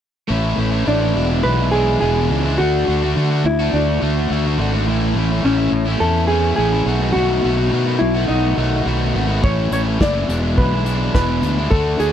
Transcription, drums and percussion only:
0, 0, Header, 1, 2, 480
1, 0, Start_track
1, 0, Key_signature, 3, "major"
1, 0, Tempo, 570342
1, 260, Time_signature, 4, 2, 24, 8
1, 10203, End_track
2, 0, Start_track
2, 0, Title_t, "Drums"
2, 7942, Note_on_c, 9, 36, 101
2, 8027, Note_off_c, 9, 36, 0
2, 8183, Note_on_c, 9, 42, 70
2, 8267, Note_off_c, 9, 42, 0
2, 8422, Note_on_c, 9, 36, 97
2, 8423, Note_on_c, 9, 38, 95
2, 8506, Note_off_c, 9, 36, 0
2, 8507, Note_off_c, 9, 38, 0
2, 8665, Note_on_c, 9, 42, 73
2, 8749, Note_off_c, 9, 42, 0
2, 8903, Note_on_c, 9, 36, 97
2, 8987, Note_off_c, 9, 36, 0
2, 9141, Note_on_c, 9, 42, 76
2, 9225, Note_off_c, 9, 42, 0
2, 9379, Note_on_c, 9, 38, 96
2, 9381, Note_on_c, 9, 36, 95
2, 9463, Note_off_c, 9, 38, 0
2, 9465, Note_off_c, 9, 36, 0
2, 9620, Note_on_c, 9, 42, 81
2, 9704, Note_off_c, 9, 42, 0
2, 9860, Note_on_c, 9, 36, 98
2, 9944, Note_off_c, 9, 36, 0
2, 10098, Note_on_c, 9, 42, 78
2, 10182, Note_off_c, 9, 42, 0
2, 10203, End_track
0, 0, End_of_file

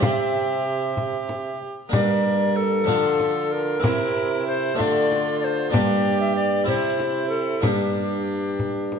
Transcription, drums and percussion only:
0, 0, Header, 1, 2, 480
1, 0, Start_track
1, 0, Tempo, 636943
1, 2, Time_signature, 6, 3, 24, 8
1, 6776, End_track
2, 0, Start_track
2, 0, Title_t, "Frame drum"
2, 18, Note_on_c, 9, 64, 76
2, 93, Note_off_c, 9, 64, 0
2, 732, Note_on_c, 9, 64, 45
2, 807, Note_off_c, 9, 64, 0
2, 973, Note_on_c, 9, 64, 44
2, 1048, Note_off_c, 9, 64, 0
2, 1454, Note_on_c, 9, 64, 77
2, 1529, Note_off_c, 9, 64, 0
2, 2169, Note_on_c, 9, 64, 47
2, 2245, Note_off_c, 9, 64, 0
2, 2410, Note_on_c, 9, 64, 48
2, 2485, Note_off_c, 9, 64, 0
2, 2891, Note_on_c, 9, 64, 74
2, 2966, Note_off_c, 9, 64, 0
2, 3618, Note_on_c, 9, 64, 46
2, 3693, Note_off_c, 9, 64, 0
2, 3856, Note_on_c, 9, 64, 46
2, 3931, Note_off_c, 9, 64, 0
2, 4324, Note_on_c, 9, 64, 76
2, 4399, Note_off_c, 9, 64, 0
2, 5032, Note_on_c, 9, 64, 45
2, 5108, Note_off_c, 9, 64, 0
2, 5270, Note_on_c, 9, 64, 47
2, 5346, Note_off_c, 9, 64, 0
2, 5751, Note_on_c, 9, 64, 71
2, 5826, Note_off_c, 9, 64, 0
2, 6475, Note_on_c, 9, 64, 48
2, 6551, Note_off_c, 9, 64, 0
2, 6722, Note_on_c, 9, 64, 40
2, 6776, Note_off_c, 9, 64, 0
2, 6776, End_track
0, 0, End_of_file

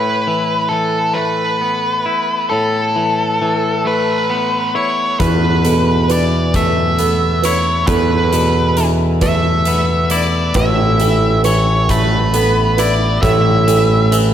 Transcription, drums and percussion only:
0, 0, Header, 1, 2, 480
1, 0, Start_track
1, 0, Tempo, 892857
1, 1348, Time_signature, 6, 3, 24, 8
1, 7708, End_track
2, 0, Start_track
2, 0, Title_t, "Drums"
2, 2795, Note_on_c, 9, 42, 59
2, 2796, Note_on_c, 9, 36, 83
2, 2849, Note_off_c, 9, 42, 0
2, 2850, Note_off_c, 9, 36, 0
2, 3036, Note_on_c, 9, 42, 42
2, 3089, Note_off_c, 9, 42, 0
2, 3277, Note_on_c, 9, 42, 46
2, 3331, Note_off_c, 9, 42, 0
2, 3517, Note_on_c, 9, 36, 62
2, 3517, Note_on_c, 9, 42, 58
2, 3570, Note_off_c, 9, 42, 0
2, 3571, Note_off_c, 9, 36, 0
2, 3756, Note_on_c, 9, 42, 43
2, 3809, Note_off_c, 9, 42, 0
2, 3997, Note_on_c, 9, 42, 48
2, 4051, Note_off_c, 9, 42, 0
2, 4233, Note_on_c, 9, 42, 65
2, 4236, Note_on_c, 9, 36, 72
2, 4287, Note_off_c, 9, 42, 0
2, 4289, Note_off_c, 9, 36, 0
2, 4476, Note_on_c, 9, 42, 42
2, 4530, Note_off_c, 9, 42, 0
2, 4714, Note_on_c, 9, 42, 44
2, 4767, Note_off_c, 9, 42, 0
2, 4953, Note_on_c, 9, 42, 61
2, 4955, Note_on_c, 9, 36, 57
2, 5007, Note_off_c, 9, 42, 0
2, 5008, Note_off_c, 9, 36, 0
2, 5190, Note_on_c, 9, 42, 44
2, 5244, Note_off_c, 9, 42, 0
2, 5429, Note_on_c, 9, 42, 52
2, 5483, Note_off_c, 9, 42, 0
2, 5668, Note_on_c, 9, 42, 65
2, 5672, Note_on_c, 9, 36, 81
2, 5722, Note_off_c, 9, 42, 0
2, 5726, Note_off_c, 9, 36, 0
2, 5912, Note_on_c, 9, 42, 45
2, 5965, Note_off_c, 9, 42, 0
2, 6151, Note_on_c, 9, 42, 42
2, 6204, Note_off_c, 9, 42, 0
2, 6393, Note_on_c, 9, 36, 64
2, 6393, Note_on_c, 9, 42, 61
2, 6447, Note_off_c, 9, 36, 0
2, 6447, Note_off_c, 9, 42, 0
2, 6633, Note_on_c, 9, 42, 43
2, 6686, Note_off_c, 9, 42, 0
2, 6871, Note_on_c, 9, 42, 48
2, 6925, Note_off_c, 9, 42, 0
2, 7111, Note_on_c, 9, 36, 78
2, 7112, Note_on_c, 9, 42, 58
2, 7165, Note_off_c, 9, 36, 0
2, 7166, Note_off_c, 9, 42, 0
2, 7354, Note_on_c, 9, 42, 46
2, 7408, Note_off_c, 9, 42, 0
2, 7592, Note_on_c, 9, 42, 46
2, 7645, Note_off_c, 9, 42, 0
2, 7708, End_track
0, 0, End_of_file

